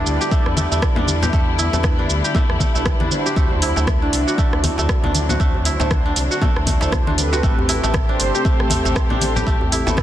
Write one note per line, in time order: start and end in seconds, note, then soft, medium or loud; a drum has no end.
0.00 7.39 D3 medium
0.00 3.32 G3 medium
0.00 0.31 A3 medium
0.00 3.33 B3 medium
0.00 0.97 D4 medium
0.00 1.19 D4 medium
0.00 1.12 E4 medium
0.00 1.19 E4 medium
0.00 5.36 E4 medium
0.00 0.27 F#4 medium
0.00 1.19 G4 medium
0.00 1.19 D5 loud
0.06 0.18 D2 medium
0.06 shaker medium
0.21 1.22 G4 medium
0.21 shaker medium
0.31 0.57 A3 medium
0.31 kick loud
0.31 shaker soft
0.46 0.67 E2 medium
0.46 cross-stick medium
0.57 0.71 A3 medium
0.57 high conga loud
0.57 shaker medium
0.71 0.80 E2 loud
0.71 1.33 A3 medium
0.71 shaker medium
0.82 kick loud
0.82 cross-stick loud
0.82 shaker soft
0.96 1.30 E2 medium
0.96 1.98 D4 medium
0.96 low conga loud
1.08 high conga medium
1.08 shaker medium
1.22 1.33 D4 medium
1.22 1.33 E4 medium
1.22 1.33 G4 medium
1.22 2.24 G4 medium
1.22 1.33 B4 medium
1.22 low conga loud
1.22 shaker medium
1.33 1.69 E2 loud
1.33 1.73 A3 medium
1.33 kick loud
1.33 shaker soft
1.58 3.15 E4 medium
1.58 shaker medium
1.73 2.07 E2 loud
1.73 2.35 A3 medium
1.73 1.95 D4 loud
1.73 1.95 E4 medium
1.73 1.95 G4 medium
1.73 1.95 B4 loud
1.73 low conga medium
1.73 shaker medium
1.83 kick loud
1.83 cross-stick loud
1.83 high conga loud
1.83 shaker soft
1.99 2.05 D4 medium
1.99 3.00 D4 medium
1.99 2.05 E4 medium
1.99 2.05 G4 medium
1.99 2.05 B4 medium
2.09 2.22 D2 loud
2.09 shaker medium
2.24 3.25 G4 medium
2.24 shaker medium
2.35 2.60 A3 medium
2.35 kick loud
2.35 low conga loud
2.35 shaker soft
2.49 2.58 E2 medium
2.49 cross-stick medium
2.60 2.75 A3 medium
2.60 kick medium
2.60 high conga loud
2.60 shaker medium
2.75 3.02 B1 loud
2.75 3.36 A3 medium
2.75 3.09 D4 medium
2.75 3.09 E4 medium
2.75 3.09 G4 medium
2.75 3.09 B4 medium
2.75 shaker medium
2.86 kick loud
2.86 cross-stick loud
2.86 high conga medium
2.86 shaker soft
3.00 3.09 E2 loud
3.00 4.02 D4 medium
3.00 high conga loud
3.11 3.73 D4 medium
3.11 3.73 E4 medium
3.11 3.73 F#4 medium
3.11 3.73 C5 loud
3.11 high conga medium
3.11 shaker medium
3.26 4.33 G4 medium
3.26 shaker medium
3.36 3.73 D2 loud
3.36 7.39 F#3 medium
3.36 3.76 A3 medium
3.36 7.39 C4 medium
3.36 kick loud
3.36 shaker soft
3.51 djembe bass medium
3.62 5.19 E4 medium
3.62 open hi-hat medium
3.62 djembe slap medium
3.62 shaker medium
3.76 4.10 D2 loud
3.76 4.38 A3 medium
3.76 3.87 D4 medium
3.76 3.87 E4 medium
3.76 3.87 F#4 medium
3.76 3.87 C5 medium
3.76 djembe slap medium
3.76 djembe tone medium
3.76 shaker medium
3.87 kick loud
3.87 cross-stick loud
3.87 high conga medium
3.87 shaker soft
4.02 5.26 D4 medium
4.02 5.04 D4 medium
4.02 5.26 E4 medium
4.02 5.26 F#4 medium
4.02 5.26 D5 loud
4.13 4.25 C2 loud
4.13 open hi-hat medium
4.13 shaker medium
4.27 5.29 F#4 medium
4.27 shaker soft
4.38 4.63 A3 medium
4.38 kick loud
4.38 shaker soft
4.53 4.73 D2 medium
4.53 cross-stick medium
4.64 4.78 A3 medium
4.64 open hi-hat medium
4.64 high conga loud
4.64 djembe bass medium
4.64 shaker medium
4.78 4.87 D2 medium
4.78 5.40 A3 medium
4.78 djembe slap medium
4.78 djembe tone medium
4.78 shaker medium
4.89 kick loud
4.89 cross-stick loud
4.89 shaker soft
5.04 5.37 D2 medium
5.04 6.05 D4 medium
5.04 low conga medium
5.15 open hi-hat medium
5.15 high conga medium
5.15 shaker medium
5.29 5.40 D4 medium
5.29 5.40 E4 medium
5.29 5.40 F#4 medium
5.29 6.31 F#4 medium
5.29 5.40 C5 medium
5.29 low conga medium
5.29 shaker medium
5.40 5.76 D2 loud
5.40 5.80 A3 medium
5.40 7.41 D4 medium
5.40 kick loud
5.40 shaker soft
5.55 djembe bass medium
5.65 7.22 E4 medium
5.65 open hi-hat medium
5.65 shaker medium
5.80 6.13 D2 loud
5.80 6.41 A3 medium
5.80 6.02 D4 loud
5.80 6.02 E4 medium
5.80 6.02 F#4 medium
5.80 6.02 C5 loud
5.80 djembe slap loud
5.80 djembe tone medium
5.80 low conga medium
5.80 shaker soft
5.91 kick loud
5.91 cross-stick loud
5.91 high conga loud
5.91 shaker soft
6.05 6.12 D4 medium
6.05 7.07 D4 medium
6.05 6.12 E4 medium
6.05 6.12 F#4 medium
6.05 6.12 C5 medium
6.16 6.28 C2 loud
6.16 open hi-hat medium
6.16 shaker medium
6.31 7.32 F#4 medium
6.31 shaker soft
6.42 6.67 A3 medium
6.42 kick loud
6.42 low conga medium
6.42 shaker soft
6.56 6.77 D2 medium
6.56 cross-stick medium
6.67 6.81 A3 medium
6.67 kick medium
6.67 open hi-hat medium
6.67 high conga loud
6.67 djembe tone medium
6.67 shaker medium
6.81 6.91 D2 loud
6.81 7.43 A3 medium
6.81 7.15 D4 medium
6.81 7.15 E4 medium
6.81 7.15 F#4 medium
6.81 7.15 C5 medium
6.81 djembe slap loud
6.81 djembe tone medium
6.81 shaker medium
6.92 kick loud
6.92 cross-stick loud
6.92 djembe tone medium
6.92 high conga medium
6.92 shaker soft
7.07 7.41 D2 medium
7.07 8.09 D4 medium
7.07 high conga loud
7.18 7.80 C4 medium
7.18 7.80 G4 medium
7.18 7.80 A4 medium
7.18 7.80 B4 loud
7.18 open hi-hat medium
7.18 high conga medium
7.18 shaker medium
7.33 8.41 F#4 medium
7.33 djembe slap loud
7.33 shaker medium
7.43 7.80 A1 loud
7.43 10.03 C3 medium
7.43 7.83 A3 medium
7.43 10.03 A3 medium
7.43 10.03 G4 medium
7.43 kick loud
7.43 shaker soft
7.59 djembe bass loud
7.69 9.25 E4 medium
7.69 open hi-hat medium
7.69 djembe slap medium
7.69 shaker medium
7.83 8.17 A1 loud
7.83 8.45 A3 medium
7.83 7.94 C4 medium
7.83 7.94 G4 medium
7.83 7.94 A4 medium
7.83 7.94 B4 medium
7.83 djembe slap loud
7.83 djembe tone medium
7.83 shaker medium
7.94 kick loud
7.94 cross-stick loud
7.94 high conga loud
7.94 shaker soft
8.09 9.33 C4 medium
8.09 9.10 D4 medium
8.09 9.33 G4 medium
8.09 9.33 A4 medium
8.09 9.33 C5 loud
8.20 8.32 G1 loud
8.20 open hi-hat medium
8.20 shaker medium
8.35 9.36 G4 medium
8.35 shaker soft
8.45 8.70 A3 medium
8.45 kick loud
8.45 shaker soft
8.60 8.80 A1 medium
8.60 cross-stick medium
8.70 8.85 A3 medium
8.70 open hi-hat medium
8.70 high conga medium
8.70 djembe bass medium
8.70 shaker medium
8.85 8.94 A1 loud
8.85 9.46 A3 medium
8.85 djembe slap loud
8.85 djembe tone medium
8.85 shaker medium
8.96 kick loud
8.96 cross-stick loud
8.96 shaker soft
9.10 9.44 A1 medium
9.10 10.03 D4 medium
9.10 low conga loud
9.21 open hi-hat medium
9.21 high conga medium
9.21 shaker medium
9.36 9.47 C4 medium
9.36 10.03 G4 medium
9.36 9.47 G4 medium
9.36 9.47 A4 medium
9.36 9.47 B4 medium
9.36 low conga loud
9.36 shaker soft
9.47 9.83 A1 loud
9.47 9.86 A3 medium
9.47 kick loud
9.47 shaker soft
9.61 djembe bass loud
9.72 10.03 E4 medium
9.72 open hi-hat medium
9.72 djembe slap medium
9.72 shaker medium
9.87 10.03 A1 loud
9.87 10.03 A3 medium
9.87 10.03 C4 loud
9.87 10.03 G4 medium
9.87 10.03 A4 medium
9.87 10.03 B4 loud
9.87 djembe slap loud
9.87 djembe tone medium
9.87 low conga medium
9.87 shaker medium
9.97 kick loud
9.97 cross-stick loud
9.97 high conga medium
9.97 shaker soft